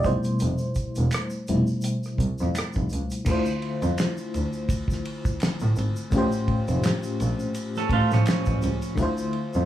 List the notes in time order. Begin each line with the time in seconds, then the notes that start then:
0.03 F1 B2 G3 A3 C5, kick, closed hi-hat, shaker
0.08 E4
0.23 closed hi-hat, shaker
0.39 F1, closed hi-hat, shaker
0.58 shaker
0.75 kick, closed hi-hat, shaker
0.95 E1, closed hi-hat, shaker
1.11 finger snap, cross-stick, closed hi-hat, shaker
1.30 shaker
1.47 F1 B2 G3 A3 E4, closed hi-hat, shaker
1.67 shaker
1.81 closed hi-hat, shaker
2.03 cross-stick, shaker
2.18 C2, kick, closed hi-hat
2.38 F2, shaker
2.43 cross-stick
2.55 finger snap, cross-stick, closed hi-hat, shaker
2.73 F1, kick, shaker
2.89 C#2, closed hi-hat, shaker
3.10 closed hi-hat, shaker
3.25 D2 D3 A3 E4, kick, crash, shaker
3.30 F4 C5
3.45 shaker
3.62 ride
3.82 F2, ride, shaker
3.98 finger snap, snare, ride, shaker
4.17 shaker
4.34 D2, ride, shaker
4.53 shaker
4.69 kick, ride, shaker
4.88 kick, shaker
4.92 snare
5.05 ride
5.25 kick, shaker
5.40 finger snap, snare, ride, shaker
5.60 A2, shaker
5.76 G#1, ride, shaker
5.96 shaker
6.10 A1 A2 A3 C#4, kick, ride, shaker
6.15 F4 G4 C5
6.32 shaker
6.48 kick, ride
6.68 F1, ride, shaker
6.84 finger snap, snare, ride, shaker
7.03 shaker
7.20 A#1, ride, shaker
7.39 shaker
7.54 ride, shaker
7.75 C#4 A4, snare, shaker
7.89 A1 A3 F4, kick, ride
8.11 A2 F3 C#4, snare, shaker
8.26 finger snap, snare, ride, shaker
8.46 A1, kick, shaker
8.62 C#2, ride, shaker
8.82 ride, shaker
8.96 D2 D3 A3 E4, kick, ride, shaker
9.01 F4 C5
9.17 shaker
9.33 ride
9.53 F2, shaker